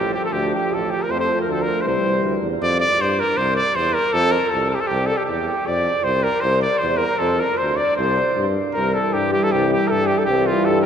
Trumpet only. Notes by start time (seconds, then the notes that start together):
Already playing: G4
0.14 G4
0.25 A4
0.33 G4
0.54 G4
0.74 A4
0.91 G4
1.03 A#4
1.11 C5
1.20 C5
1.41 A#4
1.52 A4
1.62 A#4
1.81 C5
1.87 C5
2.62 D5
2.81 D5
3.01 C5
3.20 A#4
3.37 C5
3.56 D5
3.76 C5
3.94 A#4
4.13 A4
4.32 A#4
4.49 A4
4.70 A4
4.75 G4
4.81 A4
4.87 G4
5.06 A4
5.17 G4
5.25 G4
5.67 D5
6.04 C5
6.23 A#4
6.41 C5
6.62 D5
6.78 C5
6.97 A#4
7.19 A4
7.40 A#4
7.58 C5
7.76 D5
7.96 C5
8.74 A#4
8.94 A4
9.13 G4
9.33 G4
9.44 A4
9.52 G4
9.73 G4
9.88 A4 A#4
10.07 G4
10.18 A4
10.25 G4
10.47 F4
10.65 A4
10.82 A#4